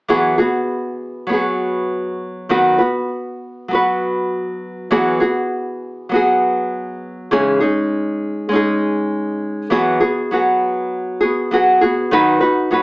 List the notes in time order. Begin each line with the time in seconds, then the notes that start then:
0.08 E3 F#3 B3 F#4 G#4
0.38 B3 F#4 G#4
1.27 F#3 B3
1.31 F#4 G#4
2.49 D#3 F#3 B3 F#4 B4
2.78 B3 F#4 B4
3.68 F#3 B3
3.73 F#4 B4
4.91 E3 F#3 B3 F#4 G#4
5.20 B3 F#4 G#4
6.09 F#3 B3
6.13 F#4 G#4
7.31 C#3 E3 G#3 C#4 D#4 G#4
7.60 G#3 C#4 D#4 G#4
8.49 G#3 C#4
8.53 D#4 G#4
9.70 E3 F#3 B3 F#4 G#4
10.00 B3 F#4 G#4
10.31 F#3 B3 F#4 G#4
11.21 B3 F#4 G#4
11.51 F#3 B3 F#4 G#4
11.81 B3 F#4 G#4
12.11 D#3 F#3 D#4 F#4 B4
12.41 D#4 F#4 B4
12.71 F#3 D#4 F#4 B4